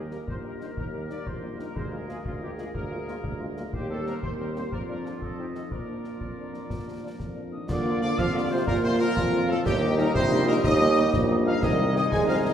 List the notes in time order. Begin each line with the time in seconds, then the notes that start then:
Already playing: D#2 G4 A#4
0.10 G3 A#3 D#4 A#4, snare
0.28 A#1 C5, concert bass drum
0.44 G3 A#3 D#4 A#4
0.60 G3 A#3 D#4 C5, snare
0.77 D#2 A#4, concert bass drum
0.93 G3 A#3 D#4 A#4
1.09 G3 A#3 D#4 D5, snare
1.26 A#1 C5, concert bass drum
1.42 G3 A#3 D#4
1.58 G3 A#3 D#4 A#4, snare
1.76 D2 G#4 A#4 C5, concert bass drum
1.92 G#3 A#3 F4 A#4
2.08 G#3 A#3 F4 G#4, snare
2.24 D2 F4, concert bass drum
2.41 G#3 A#3 F4 G4
2.58 G#3 A#3 F4 G#4, snare
2.74 D2 A#4, concert bass drum
2.90 G#3 A#3 F4
3.08 G#3 A#3 F4, snare
3.24 D2, concert bass drum
3.40 G#3 A#3 F4
3.56 G#3 A#3 F4, snare
3.73 D#2 G4 C5, concert bass drum
3.89 G3 A#3 C4 A4
4.05 G3 A#3 C4 A#4, snare
4.22 D#2 C5, concert bass drum
4.39 G3 A#3 C4 A#4
4.55 G3 A#3 C4 C5, snare
4.71 F2 F4 A#4 D5, concert bass drum
4.88 F3 A#3 D4 A#4
5.05 F3 A#3 D4 F4, snare
5.21 F2 A4 D#5, concert bass drum
5.38 F3 C4 D#4 G4
5.54 F3 C4 D#4 A4, snare
5.71 A#2 F4 A#4 D5, concert bass drum
5.89 F3 A#3 D4
6.04 F3 A#3 D4, snare
6.21 F2, concert bass drum
6.38 F3 A#3 D4
6.53 F3 A#3 D4, snare
6.70 A#2, concert bass drum, snare
6.86 F3 A#3 D4
7.02 F3 A#3 D4
7.19 F2, concert bass drum, snare
7.35 F3 A#3 D4
7.52 D#3 F3 A#3 D4 D#5 D#6
7.68 A#2 D3 F3 F4 D5 F5 D6, concert bass drum, snare, crash
7.85 F3 A#3 F4
8.01 D3 F3 A#3 F4 D5 D6, snare
8.18 F2 F3 F5 F6, concert bass drum, snare
8.34 D3 F3 A#3 F4 D5 D6
8.50 C3 F3 A#3 F4 C5 C6
8.66 A#2 A#4 A#5, concert bass drum, snare
8.83 C3 F3 A#3 F4 C5 C6
8.99 A#2 F3 A#3 F4 A#4 A#5
9.16 F2, concert bass drum, snare
9.32 F3 A#3 F4
9.48 A2 F3 A#3 F4 A4 A5
9.65 D#2 G2 G3 D#4 G4 D#5 G5, concert bass drum, snare, crash
9.82 G3 A#3 D#4
9.97 A#2 G3 A#3 D#4 A#4 A#5, snare
10.14 A#1 C3 C5 C6, concert bass drum, snare
10.31 G3 A#3 D#4
10.46 A#2 G3 A#3 D#4 A#4 A#5
10.63 D#2 D#3 D#5 D#6, concert bass drum, snare
10.80 G3 A#3 D#4
10.96 G3 A#3 D#4
11.13 A#1, concert bass drum, snare
11.29 G3 A#3 D#4
11.45 F3 G3 A#3 D#4 F5 F6
11.62 C2 D#3 G#3 D#4 G#4 D#5 D#6, concert bass drum, snare, crash
11.78 G#3 C4 D#4
11.95 D#3 G#3 C4 D#4 D#5 D#6, snare
12.11 C2 G#3 G#5 G#6, concert bass drum, snare
12.28 F3 G#3 C4 D#4 F5 F6
12.43 D#3 G#3 C4 D#4 D#5 D#6